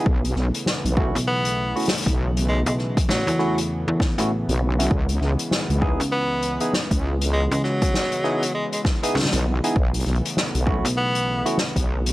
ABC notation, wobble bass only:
X:1
M:4/4
L:1/16
Q:"Swing 16ths" 1/4=99
K:Bmix
V:1 name="Wobble bass" clef=bass
B,,,2 B,,, z2 B,,,2 z6 B,,,3- | B,,, z12 B,,,3 | C,,2 C,, z2 C,,2 z6 C,,3- | C,, z12 B,,,2 z |
B,,,2 B,,, z2 B,,,2 z6 B,,,3 |]